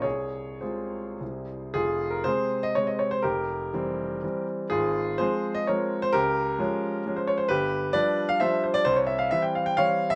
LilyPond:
<<
  \new Staff \with { instrumentName = "Grand piano" } { \time 3/4 \key f \minor \tempo 4 = 126 <aes' des''>4 <aes' c''>4. r8 | <f' aes'>8. bes'16 <aes' c''>8. ees''16 des''16 ees''16 des''16 c''16 | <g' bes'>2~ <g' bes'>8 r8 | <f' aes'>4 <aes' c''>8. ees''16 <bes' des''>8. c''16 |
<g' bes'>2~ <g' bes'>16 c''16 des''16 c''16 | <g' b'>4 <b' d''>8. f''16 <c'' e''>8 c''16 d''16 | c''16 des''16 e''16 f''16 e''16 g''16 f''16 g''16 <des'' f''>8. e''16 | }
  \new Staff \with { instrumentName = "Grand piano" } { \clef bass \time 3/4 \key f \minor c,4 <c aes f'>4 <c, c g e'>4 | f,,4 <c aes c'>4 <c aes c'>4 | f,,4 <e g c'>4 <e g c'>4 | aes,,4 <f aes c'>4 <f aes c'>4 |
des,4 <f aes des'>4 <f aes des'>4 | g,,4 <f g d'>4 <f g d'>4 | c,4 <e g c'>4 <e g c'>4 | }
>>